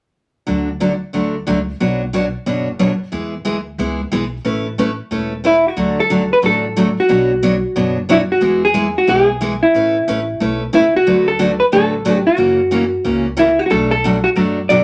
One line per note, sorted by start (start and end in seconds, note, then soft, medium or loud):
0.47 1.01 D2 medium
0.47 0.68 D3 medium
0.47 0.68 F#3 medium
0.47 0.68 A3 medium
0.47 0.68 D4 medium
0.47 0.68 F#4 medium
0.80 0.91 D3 medium
0.80 0.92 F#3 medium
0.80 0.92 A3 medium
0.80 0.92 D4 medium
0.80 0.92 F#4 medium
1.13 1.42 D2 medium
1.13 1.34 D3 soft
1.13 1.34 F#3 medium
1.13 1.35 A3 medium
1.13 1.35 D4 medium
1.13 1.35 F#4 medium
1.47 1.75 C#2 medium
1.47 1.58 D3 medium
1.47 1.58 F#3 medium
1.47 1.58 A3 medium
1.47 1.58 D4 medium
1.47 1.58 F#4 medium
1.80 2.33 B1 medium
1.80 2.01 B2 medium
1.80 2.01 F#3 soft
1.80 2.01 B3 medium
1.80 2.01 D4 medium
1.80 2.01 F#4 medium
1.80 2.02 C#5 medium
2.13 2.24 B2 medium
2.13 2.24 F#3 medium
2.13 2.24 B3 medium
2.13 2.25 D4 medium
2.13 2.25 F#4 medium
2.13 2.25 C#5 medium
2.46 3.00 F#1 medium
2.46 2.67 B2 medium
2.46 2.67 F#3 medium
2.46 2.67 B3 medium
2.46 2.68 D4 medium
2.46 2.67 F#4 medium
2.46 2.68 C#5 medium
2.79 2.91 B2 medium
2.79 2.91 F#3 medium
2.79 2.91 B3 medium
2.79 2.91 D4 medium
2.79 2.91 F#4 medium
2.79 2.91 C#5 medium
3.12 3.39 E2 medium
3.12 3.33 E3 medium
3.12 3.33 G#3 medium
3.12 3.33 B3 medium
3.12 3.34 E4 medium
3.12 3.34 G#4 medium
3.45 3.74 D2 medium
3.45 3.57 E3 medium
3.45 3.56 G#3 medium
3.45 3.57 B3 medium
3.45 3.57 E4 medium
3.45 3.57 G#4 medium
3.78 4.07 C#2 medium
3.78 4.00 E3 soft
3.78 4.00 G#3 medium
3.78 4.00 B3 medium
3.78 4.00 E4 medium
3.78 4.00 G#4 medium
4.12 4.40 B1 medium
4.12 4.23 E3 medium
4.12 4.23 G#3 medium
4.12 4.23 B3 medium
4.12 4.23 E4 medium
4.12 4.24 G#4 medium
4.45 4.98 A1 medium
4.45 4.66 A3 medium
4.45 4.66 C#4 medium
4.45 4.66 E4 medium
4.45 4.66 B4 medium
4.78 4.89 A3 medium
4.78 4.90 C#4 medium
4.78 4.90 E4 medium
4.78 4.90 B4 medium
5.11 5.64 E1 medium
5.11 5.32 A3 medium
5.11 5.32 C#4 medium
5.11 5.32 E4 medium
5.11 5.33 B4 medium
5.44 5.55 A3 medium
5.44 5.56 C#4 medium
5.44 5.56 E4 medium
5.44 5.65 E4 medium
5.44 5.56 B4 medium
5.68 6.00 F#4 medium
5.77 6.30 D2 medium
5.77 5.98 D3 medium
5.77 5.98 F#3 medium
5.77 5.98 A3 medium
5.77 5.98 D4 medium
5.77 5.98 F#4 medium
6.00 6.33 A4 loud
6.10 6.21 D3 medium
6.10 6.21 F#3 medium
6.10 6.22 A3 medium
6.10 6.22 D4 medium
6.10 6.22 F#4 medium
6.33 6.38 B4 medium
6.42 6.96 A1 medium
6.42 6.64 D3 medium
6.42 6.64 F#3 medium
6.42 6.64 A3 medium
6.42 6.64 D4 medium
6.42 6.64 F#4 medium
6.42 7.00 A4 medium
6.76 6.88 D3 medium
6.76 6.88 F#3 medium
6.76 6.88 A3 medium
6.76 6.88 D4 medium
6.76 6.88 F#4 medium
7.00 7.94 F#4 medium
7.09 7.63 B1 medium
7.09 7.30 B2 medium
7.09 7.30 F#3 medium
7.09 7.30 B3 medium
7.09 7.30 D4 medium
7.09 7.31 F#4 medium
7.09 7.31 C#5 medium
7.43 7.54 B2 medium
7.43 7.54 F#3 medium
7.43 7.54 B3 medium
7.43 7.54 D4 medium
7.43 7.54 F#4 medium
7.43 7.54 C#5 medium
7.76 8.29 F#1 medium
7.76 7.97 B2 medium
7.76 7.97 F#3 medium
7.76 7.97 B3 medium
7.76 7.97 D4 medium
7.76 7.97 F#4 medium
7.76 7.97 C#5 medium
8.09 8.20 B2 medium
8.09 8.20 F#3 medium
8.09 8.20 B3 medium
8.09 8.20 D4 medium
8.09 8.16 E4 medium
8.09 8.21 F#4 medium
8.09 8.20 C#5 medium
8.32 8.61 F#4 medium
8.41 8.95 E2 medium
8.41 8.62 E3 medium
8.41 8.62 G#3 medium
8.41 8.63 B3 medium
8.41 8.63 E4 medium
8.41 8.63 G#4 medium
8.65 8.98 G#4 loud
8.74 8.86 E3 medium
8.74 8.86 G#3 medium
8.74 8.86 B3 medium
8.74 8.86 E4 medium
8.74 8.86 G#4 medium
8.98 9.10 F#4 medium
9.07 9.61 B1 medium
9.07 9.29 E3 medium
9.07 9.29 G#3 medium
9.07 9.29 B3 medium
9.07 9.29 E4 medium
9.07 9.26 G4 loud
9.07 9.29 G#4 medium
9.26 9.64 G#4 loud
9.41 9.52 E3 medium
9.41 9.52 G#3 medium
9.41 9.53 B3 medium
9.41 9.53 E4 medium
9.41 9.53 G#4 medium
9.63 10.57 E4 medium
9.74 10.01 A1 medium
9.74 9.95 A3 medium
9.74 9.96 C#4 medium
9.74 9.96 E4 medium
9.74 9.96 B4 medium
10.07 10.36 A1 medium
10.07 10.19 A3 medium
10.07 10.19 C#4 medium
10.07 10.19 E4 medium
10.07 10.19 B4 medium
10.40 10.69 B1 medium
10.40 10.61 A3 medium
10.40 10.62 C#4 medium
10.40 10.62 E4 medium
10.40 10.62 B4 medium
10.73 11.02 C#2 medium
10.73 10.84 A3 medium
10.73 10.85 C#4 medium
10.73 10.85 E4 medium
10.73 10.93 E4 medium
10.73 10.85 B4 medium
10.96 11.26 F#4 medium
11.07 11.60 D2 medium
11.07 11.28 D3 medium
11.07 11.28 F#3 medium
11.07 11.28 A3 medium
11.07 11.28 D4 medium
11.07 11.28 F#4 medium
11.07 11.28 B4 medium
11.28 11.59 A4 medium
11.39 11.51 D3 medium
11.39 11.51 F#3 medium
11.39 11.51 A3 medium
11.39 11.51 D4 medium
11.39 11.51 F#4 medium
11.39 11.51 B4 medium
11.60 11.65 B4 medium
11.72 12.26 A1 medium
11.72 11.93 D3 medium
11.72 11.94 F#3 medium
11.72 11.94 A3 medium
11.72 11.94 D4 medium
11.72 11.94 F#4 medium
11.72 12.17 A4 medium
11.72 11.94 B4 medium
12.05 12.17 D3 medium
12.05 12.17 F#3 medium
12.05 12.17 A3 medium
12.05 12.17 D4 medium
12.05 12.17 F#4 medium
12.05 12.17 B4 medium
12.17 12.28 G4 medium
12.27 13.22 F#4 medium
12.37 12.92 F#2 medium
12.37 12.59 C#3 medium
12.37 12.59 E3 medium
12.37 12.59 A#3 medium
12.37 12.59 C#4 medium
12.37 12.60 F#4 medium
12.71 12.83 C#3 medium
12.71 12.83 E3 medium
12.71 12.83 A#3 medium
12.71 12.83 C#4 medium
12.71 12.83 F#4 medium
13.04 13.58 C#2 medium
13.04 13.26 C#3 medium
13.04 13.26 E3 medium
13.04 13.26 A#3 medium
13.04 13.26 C#4 medium
13.04 13.26 F#4 medium
13.37 13.49 C#3 medium
13.37 13.49 E3 medium
13.37 13.49 A#3 medium
13.37 13.49 C#4 medium
13.37 13.59 E4 medium
13.37 13.49 F#4 medium
13.59 13.65 F#4 medium
13.66 13.70 F#4 medium
13.70 14.24 B1 loud
13.70 13.92 B2 medium
13.70 13.92 F#3 medium
13.70 13.92 A3 medium
13.70 13.92 D4 medium
13.70 13.92 F#4 medium
13.70 13.90 A4 loud
13.91 14.26 A4 loud
14.04 14.15 B2 medium
14.04 14.16 F#3 medium
14.04 14.16 A3 medium
14.04 14.16 D4 medium
14.04 14.16 F#4 medium
14.24 14.29 F#4 medium
14.36 14.84 F#2 medium
14.36 14.57 B2 medium
14.36 14.58 F#3 medium
14.36 14.58 A3 medium
14.36 14.58 D4 medium
14.36 14.58 F#4 medium
14.36 14.71 A4 loud
14.69 14.81 B2 medium
14.69 14.81 F#3 medium
14.69 14.81 A3 medium
14.69 14.82 D4 medium
14.69 14.82 F#4 medium
14.69 14.84 D5 loud